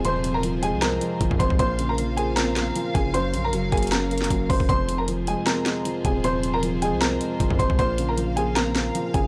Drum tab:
HH |x-----------x-----------x-----------x-----------x-----------x-----------x-----------x-----------|x-----------x-----------x-----------x-----------x-----------x-----------x-----------x-----------|x-----------x-----------x-----------x--x--x--x--x-----------x---x---x---x-----------o-----------|x-----------x-----------x-----------x-----------x-----------x-----------x-----------x-----------|
SD |------------------------------------------------o-----------------------------------------------|------------------------------------------------o-----------o-----------------------------------|------------------------------------------------o-----------------o-----------------------------|------------------------------------------------o-----------o-----------------------------------|
BD |------------------------------------------------------------------------o-----o-----o-----o-----|o-----------------------------------------------------------------------------------o-----------|------------------------------------o-----------------------------------o-----------o-----o-----|o-----------------------------------------------------------------------------------o-----------|

HH |x-----------x-----------x-----------x-----------x-----------x-----------x-----------x-----------|x-----------x-----------x-----------x-----------x-----------x-----------x-----------x-----------|
SD |------------------------------------------------o-----------------------------------------------|------------------------------------------------o-----------o-----------------------------------|
BD |------------------------------------------------------------------------o-----o-----o-----o-----|o-----------------------------------------------------------------------------------o-----------|